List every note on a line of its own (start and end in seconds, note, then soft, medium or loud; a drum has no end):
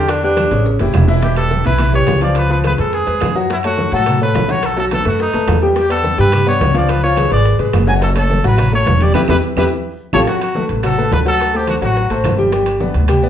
0.00 0.46 E2 loud
0.00 0.18 D3 medium
0.00 0.18 D4 medium
0.00 0.11 G4 loud
0.00 0.19 D5 medium
0.08 0.23 D4 medium
0.08 high bongo medium
0.08 high conga soft
0.08 high timbale loud
0.08 claves medium
0.08 maracas medium
0.23 0.46 G3 medium
0.23 0.65 D4 loud
0.23 0.47 G4 medium
0.23 0.47 B4 medium
0.23 high bongo soft
0.23 high conga soft
0.23 maracas medium
0.36 high bongo medium
0.36 high conga medium
0.36 high timbale medium
0.36 low timbale medium
0.36 claves medium
0.36 maracas medium
0.51 0.78 A1 medium
0.51 0.75 C#3 medium
0.51 0.75 C#4 medium
0.51 0.75 C#5 medium
0.51 high conga soft
0.51 high timbale medium
0.51 maracas soft
0.65 high bongo medium
0.65 maracas medium
0.79 0.93 F#1 medium
0.79 1.03 E3 medium
0.79 1.04 E4 medium
0.79 1.04 G4 medium
0.79 high bongo medium
0.79 high conga soft
0.79 high timbale medium
0.79 maracas medium
0.93 1.59 E1 loud
0.93 low bongo medium
0.93 high conga medium
0.93 high timbale medium
0.93 low timbale medium
0.93 claves medium
0.93 maracas medium
1.07 1.20 E3 medium
1.07 1.20 E4 medium
1.07 1.20 E5 medium
1.07 low bongo medium
1.07 maracas soft
1.21 1.34 E3 medium
1.21 1.34 E4 medium
1.21 1.36 G4 medium
1.21 1.34 E5 medium
1.21 high bongo medium
1.21 high conga soft
1.21 high timbale medium
1.21 maracas medium
1.35 1.60 G3 medium
1.35 1.60 G4 medium
1.35 1.63 A4 loud
1.35 1.60 B4 medium
1.35 high bongo soft
1.35 high conga soft
1.35 high timbale medium
1.35 claves medium
1.35 maracas medium
1.50 high bongo medium
1.50 high conga medium
1.50 low timbale medium
1.50 maracas medium
1.65 2.04 B1 medium
1.65 1.77 E3 medium
1.65 1.77 E4 medium
1.65 1.92 B4 loud
1.65 1.77 E5 medium
1.65 high conga soft
1.65 high timbale medium
1.65 maracas soft
1.78 1.91 E3 medium
1.78 1.91 E4 medium
1.78 1.91 E5 medium
1.78 high bongo medium
1.78 high conga soft
1.78 low conga medium
1.78 high timbale medium
1.78 claves medium
1.78 maracas medium
1.93 2.16 G3 medium
1.93 2.17 G4 medium
1.93 2.17 B4 medium
1.93 2.21 C#5 medium
1.93 high bongo soft
1.93 high conga soft
1.93 low conga medium
1.93 maracas medium
2.07 2.73 C#2 loud
2.07 high bongo medium
2.07 low bongo medium
2.07 high conga medium
2.07 high timbale medium
2.07 low timbale medium
2.07 maracas medium
2.21 2.45 F3 medium
2.21 2.45 F4 medium
2.21 2.36 D5 medium
2.21 2.45 F5 medium
2.21 high bongo soft
2.21 high conga medium
2.21 high timbale medium
2.21 maracas soft
2.35 2.51 B4 loud
2.35 high bongo medium
2.35 high conga soft
2.35 high timbale medium
2.35 claves medium
2.35 maracas medium
2.49 2.62 F3 medium
2.49 2.62 F4 medium
2.49 2.58 B4 medium
2.49 2.62 F5 medium
2.49 high bongo soft
2.49 high conga soft
2.49 maracas medium
2.64 2.76 G#3 medium
2.64 2.76 G#4 medium
2.64 2.76 B4 medium
2.64 2.73 B4 loud
2.64 high bongo medium
2.64 high conga medium
2.64 high timbale medium
2.64 low timbale medium
2.64 claves medium
2.64 maracas medium
2.78 3.05 F2 medium
2.78 3.02 G#3 medium
2.78 3.02 G#4 medium
2.78 2.96 A4 medium
2.78 3.02 B4 medium
2.78 high conga soft
2.78 high timbale medium
2.78 maracas soft
2.93 3.36 G#4 loud
2.93 high bongo medium
2.93 high conga soft
2.93 maracas medium
3.07 3.20 F2 medium
3.07 3.30 G#3 medium
3.07 3.30 G#4 medium
3.07 3.30 B4 medium
3.07 high conga soft
3.07 high timbale medium
3.07 maracas medium
3.21 3.87 F#2 medium
3.21 high bongo medium
3.21 low bongo medium
3.21 high conga medium
3.21 high timbale medium
3.21 low timbale medium
3.21 claves medium
3.21 maracas medium
3.35 3.47 F#3 medium
3.35 3.47 F#4 medium
3.35 3.47 F#5 medium
3.35 high bongo soft
3.35 maracas soft
3.50 3.62 F#3 medium
3.50 3.58 E4 medium
3.50 3.62 F#4 medium
3.50 3.62 F#5 medium
3.50 high bongo medium
3.50 high conga soft
3.50 high timbale medium
3.50 maracas medium
3.63 3.87 A3 medium
3.63 3.91 F#4 loud
3.63 3.87 A4 medium
3.63 3.88 C#5 medium
3.63 high bongo soft
3.63 high conga soft
3.63 high timbale medium
3.63 claves medium
3.63 maracas medium
3.78 high bongo medium
3.78 high conga medium
3.78 low timbale medium
3.78 maracas medium
3.92 4.32 A2 loud
3.92 4.04 F#3 medium
3.92 4.04 F#4 medium
3.92 4.20 A4 loud
3.92 4.04 F#5 medium
3.92 high conga soft
3.92 high timbale medium
3.92 maracas soft
4.06 4.18 F#3 medium
4.06 4.18 F#4 medium
4.06 4.18 F#5 medium
4.06 high bongo medium
4.06 high conga soft
4.06 low conga medium
4.06 high timbale medium
4.06 claves medium
4.06 maracas medium
4.21 4.44 A3 medium
4.21 4.44 A4 medium
4.21 4.53 B4 medium
4.21 4.44 C#5 medium
4.21 high bongo soft
4.21 high conga soft
4.21 maracas medium
4.34 5.00 B1 medium
4.34 high bongo medium
4.34 low bongo medium
4.34 high conga medium
4.34 high timbale medium
4.34 low timbale medium
4.34 maracas medium
4.49 4.72 F#3 medium
4.49 4.72 F#4 medium
4.49 4.67 C#5 loud
4.49 4.72 F#5 medium
4.49 high bongo soft
4.49 high conga medium
4.49 high timbale medium
4.49 maracas soft
4.63 4.78 A4 medium
4.63 high bongo medium
4.63 high conga soft
4.63 high timbale medium
4.63 claves medium
4.63 maracas medium
4.77 4.88 F#3 medium
4.77 4.89 F#4 medium
4.77 4.85 A4 loud
4.77 4.89 F#5 medium
4.77 high bongo soft
4.77 high conga soft
4.77 maracas medium
4.91 5.03 A3 medium
4.91 5.03 A4 medium
4.91 5.06 A4 loud
4.91 5.03 B4 medium
4.91 high bongo medium
4.91 high conga medium
4.91 high timbale loud
4.91 low timbale medium
4.91 claves medium
4.91 maracas medium
5.05 5.32 F#2 medium
5.05 5.28 A3 medium
5.05 5.20 F#4 medium
5.05 5.29 A4 medium
5.05 5.29 B4 medium
5.05 high conga soft
5.05 high timbale medium
5.05 maracas soft
5.19 5.60 D#4 loud
5.19 high bongo medium
5.19 high conga soft
5.19 maracas medium
5.33 5.47 F#2 medium
5.33 5.57 A3 medium
5.33 5.57 A4 medium
5.33 5.57 B4 medium
5.33 high conga soft
5.33 high timbale medium
5.48 6.13 E2 medium
5.48 high bongo medium
5.48 low bongo medium
5.48 high conga medium
5.48 high timbale medium
5.48 low timbale medium
5.48 claves medium
5.48 maracas medium
5.61 5.74 G3 medium
5.61 5.74 G4 medium
5.61 5.74 G5 medium
5.61 high bongo soft
5.61 maracas soft
5.75 5.87 G3 medium
5.75 5.88 G4 medium
5.75 5.90 G4 medium
5.75 5.88 G5 medium
5.75 high bongo medium
5.75 high conga soft
5.75 high timbale medium
5.75 maracas medium
5.90 6.13 B3 medium
5.90 6.17 A4 loud
5.90 6.13 B4 medium
5.90 6.13 D5 medium
5.90 high conga soft
5.90 high timbale loud
5.90 claves medium
6.04 high bongo medium
6.04 high conga medium
6.04 low timbale medium
6.04 maracas medium
6.18 6.58 G2 medium
6.18 6.30 G3 medium
6.18 6.30 G4 medium
6.18 6.46 B4 loud
6.18 6.30 G5 medium
6.18 high conga soft
6.18 high timbale medium
6.18 maracas soft
6.32 6.44 G3 medium
6.32 6.44 G4 medium
6.32 6.44 G5 medium
6.32 high bongo medium
6.32 high conga soft
6.32 low conga medium
6.32 high timbale loud
6.32 claves medium
6.32 maracas medium
6.46 6.70 B3 medium
6.46 6.70 B4 medium
6.46 6.74 C#5 medium
6.46 6.70 D5 medium
6.46 high bongo soft
6.46 high conga soft
6.46 maracas medium
6.61 7.26 C#2 medium
6.61 high bongo medium
6.61 low bongo medium
6.61 high conga medium
6.61 high timbale medium
6.61 low timbale medium
6.61 maracas medium
6.74 6.98 F3 medium
6.74 6.98 F4 medium
6.74 6.91 D5 medium
6.74 6.98 F5 medium
6.74 high bongo soft
6.74 high conga medium
6.74 high timbale medium
6.74 maracas soft
6.89 7.03 B4 medium
6.89 high bongo medium
6.89 high conga soft
6.89 high timbale medium
6.89 claves medium
6.89 maracas medium
7.03 7.15 F3 medium
7.03 7.15 F4 medium
7.03 7.30 C#5 loud
7.03 7.15 F5 medium
7.03 high bongo soft
7.03 high conga soft
7.03 maracas medium
7.16 7.29 G#3 medium
7.16 7.29 G#4 medium
7.16 7.29 B4 medium
7.16 high bongo medium
7.16 high conga medium
7.16 high timbale loud
7.16 low timbale medium
7.16 claves medium
7.16 maracas medium
7.31 7.58 G#1 medium
7.31 7.54 G#3 medium
7.31 7.55 G#4 medium
7.31 7.55 B4 medium
7.31 7.58 D5 medium
7.31 high conga soft
7.31 high timbale medium
7.31 maracas soft
7.45 high bongo medium
7.45 high conga soft
7.45 maracas medium
7.59 7.73 G#1 medium
7.59 7.82 G#3 medium
7.59 7.83 G#4 medium
7.59 7.83 B4 medium
7.59 high conga soft
7.59 high timbale medium
7.73 8.39 F#1 loud
7.73 high bongo medium
7.73 low bongo medium
7.73 high conga medium
7.73 high timbale loud
7.73 low timbale medium
7.73 claves medium
7.73 maracas medium
7.87 7.99 F#3 medium
7.87 7.99 F#4 medium
7.87 7.99 F#5 medium
7.87 7.95 G#5 loud
7.87 high bongo soft
7.87 maracas soft
8.01 8.13 F#3 medium
8.01 8.13 F#4 medium
8.01 8.09 A4 loud
8.01 8.14 F#5 medium
8.01 high bongo medium
8.01 high conga soft
8.01 high timbale medium
8.01 maracas medium
8.15 8.39 A3 medium
8.15 8.39 A4 medium
8.15 8.43 A4 loud
8.15 8.39 C#5 medium
8.15 high bongo soft
8.15 high conga soft
8.15 high timbale medium
8.15 claves medium
8.15 maracas medium
8.30 high bongo medium
8.30 high conga loud
8.30 low timbale medium
8.30 maracas medium
8.44 8.83 A1 loud
8.44 8.56 F#3 medium
8.44 8.56 F#4 medium
8.44 8.72 B4 loud
8.44 8.56 F#5 medium
8.44 high conga soft
8.44 high timbale medium
8.44 maracas soft
8.58 8.70 F#3 medium
8.58 8.70 F#4 medium
8.58 8.70 F#5 medium
8.58 high bongo medium
8.58 high conga soft
8.58 low conga medium
8.58 high timbale loud
8.58 claves medium
8.58 maracas medium
8.72 8.96 A3 medium
8.72 8.96 A4 medium
8.72 8.96 C#5 medium
8.72 9.04 C#5 loud
8.72 high bongo soft
8.72 high conga soft
8.72 maracas medium
8.86 9.13 E1 loud
8.86 high bongo medium
8.86 low bongo medium
8.86 high conga medium
8.86 high timbale medium
8.86 low timbale medium
8.86 maracas medium
9.01 9.13 G3 medium
9.01 9.13 G4 loud
9.01 9.14 D5 medium
9.01 9.13 G5 medium
9.01 high bongo soft
9.01 high conga medium
9.01 high timbale medium
9.01 maracas soft
9.14 9.25 E2 loud
9.14 9.24 E4 medium
9.14 9.24 G4 loud
9.14 9.21 B4 medium
9.14 9.24 B4 loud
9.14 low bongo loud
9.14 high conga loud
9.14 high timbale loud
9.14 claves loud
9.14 maracas loud
9.28 9.39 E2 medium
9.28 9.38 E4 loud
9.28 9.38 G4 loud
9.28 9.38 B4 medium
9.28 9.36 B4 loud
9.28 low bongo loud
9.28 high conga medium
9.28 high timbale loud
9.28 claves loud
9.28 maracas loud
9.56 9.67 E2 medium
9.56 9.66 E4 loud
9.56 9.66 G4 loud
9.56 9.66 B4 loud
9.56 9.65 B4 loud
9.56 low bongo loud
9.56 high conga medium
9.56 high timbale loud
9.56 claves loud
9.56 maracas loud
10.13 10.24 A1 loud
10.13 10.22 F4 loud
10.13 10.22 G4 loud
10.13 10.22 A4 loud
10.13 10.20 C#5 loud
10.13 low bongo loud
10.13 high conga loud
10.13 high timbale medium
10.13 claves loud
10.13 maracas loud
10.27 10.51 F#3 medium
10.27 10.51 F#4 medium
10.27 10.41 F#4 medium
10.27 10.51 F#5 medium
10.27 high bongo medium
10.27 high conga soft
10.27 high timbale medium
10.27 maracas medium
10.40 10.68 F#4 medium
10.40 high bongo soft
10.40 high conga soft
10.40 high timbale medium
10.40 claves medium
10.55 10.79 A3 medium
10.55 10.79 A4 medium
10.55 10.79 B4 medium
10.55 high bongo medium
10.55 high conga medium
10.55 low timbale medium
10.55 maracas medium
10.69 11.09 A1 medium
10.69 high conga soft
10.69 high timbale medium
10.69 maracas soft
10.83 10.95 F#3 medium
10.83 10.95 F#4 medium
10.83 11.11 A4 medium
10.83 10.96 F#5 medium
10.83 high bongo medium
10.83 high conga soft
10.83 low conga medium
10.83 high timbale loud
10.83 claves medium
10.83 maracas medium
10.97 11.21 A3 medium
10.97 11.21 A4 medium
10.97 11.21 B4 medium
10.97 high bongo soft
10.97 high conga soft
10.97 low conga medium
10.97 maracas medium
11.11 11.77 D2 medium
11.11 11.19 B4 loud
11.11 high bongo medium
11.11 low bongo medium
11.11 high conga medium
11.11 high timbale medium
11.11 low timbale medium
11.11 maracas medium
11.26 11.49 F#3 medium
11.26 11.49 F#4 medium
11.26 11.58 A4 loud
11.26 11.49 F#5 medium
11.26 high bongo soft
11.26 high timbale medium
11.26 maracas soft
11.40 high bongo medium
11.40 high conga soft
11.40 high timbale medium
11.40 claves medium
11.40 maracas medium
11.53 11.77 A3 medium
11.53 11.69 G4 medium
11.53 11.77 A4 medium
11.53 11.77 C5 medium
11.53 high bongo soft
11.53 high conga soft
11.53 maracas medium
11.67 11.76 F#4 medium
11.67 high bongo medium
11.67 high conga medium
11.67 high timbale medium
11.67 low timbale medium
11.67 claves medium
11.67 maracas medium
11.82 12.08 A1 medium
11.82 12.05 F#3 medium
11.82 12.05 F#4 medium
11.82 12.36 F#4 medium
11.82 12.05 F#5 medium
11.82 high conga soft
11.82 high timbale medium
11.82 maracas soft
11.96 high bongo medium
11.96 high conga soft
11.96 maracas medium
12.10 12.23 A1 medium
12.10 12.33 A3 medium
12.10 12.34 A4 medium
12.10 12.34 C5 medium
12.10 high conga soft
12.10 high timbale medium
12.10 maracas medium
12.24 12.89 G1 medium
12.24 high bongo medium
12.24 low bongo medium
12.24 high conga medium
12.24 high timbale medium
12.24 low timbale medium
12.24 claves medium
12.24 maracas medium
12.38 12.50 G3 medium
12.38 12.50 G4 medium
12.38 12.50 G5 medium
12.38 high bongo soft
12.38 high conga medium
12.38 maracas soft
12.52 12.75 G3 medium
12.52 12.75 G4 medium
12.52 12.75 G5 medium
12.52 high bongo medium
12.52 high conga soft
12.52 high timbale medium
12.52 maracas medium
12.66 high bongo soft
12.66 high conga soft
12.66 high timbale medium
12.66 claves medium
12.66 maracas medium
12.80 13.04 B3 medium
12.80 13.04 B4 medium
12.80 13.04 D5 medium
12.80 high bongo medium
12.80 high conga medium
12.80 low timbale medium
12.80 maracas medium
12.94 13.29 D2 loud
12.94 high conga soft
12.94 high timbale medium
12.94 maracas soft
13.08 13.20 G3 medium
13.08 13.20 G4 medium
13.08 13.20 G5 medium
13.08 high bongo medium
13.08 high conga soft
13.08 low conga medium
13.08 high timbale medium
13.08 claves medium
13.08 maracas medium
13.22 13.29 B3 medium
13.22 13.29 B4 medium
13.22 13.29 D5 medium
13.22 high bongo soft
13.22 maracas medium